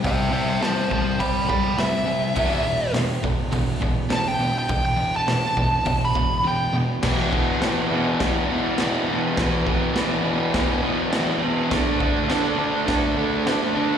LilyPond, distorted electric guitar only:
\new Staff \with { instrumentName = "Distorted electric guitar" } { \clef bass \time 4/4 \key e \minor \tempo 4 = 103 <c g>8 <c g>8 <c g>8 <c g>8 <c g>8 <c g>8 <c g>8 <c g>8 | <e, b, e>8 <e, b,>8 <e, b,>8 <e, b,>8 <e, b,>8 <e, b,>8 <e, b,>8 <e, b,>8 | <e, b,>8 <e, b,>8 <e, b,>8 <e, b,>8 <e, b,>8 <e, b,>8 <e, b,>8 <e, b,>8 | <e, b, e>8 <e, b, e>8 <e, b, e>8 <e, b, e>8 <e, b, e>8 <e, b, e>8 <e, b, e>8 <e, b, e>8 |
<e, b, e>8 <e, b, e>8 <e, b, e>8 <e, b, e>8 <e, b, e>8 <e, b, e>8 <e, b, e>8 <e, b, e>8 | <d a d'>8 <d a d'>8 <d a d'>8 <d a d'>8 <d a d'>8 <d a d'>8 <d a d'>8 <d a d'>8 | }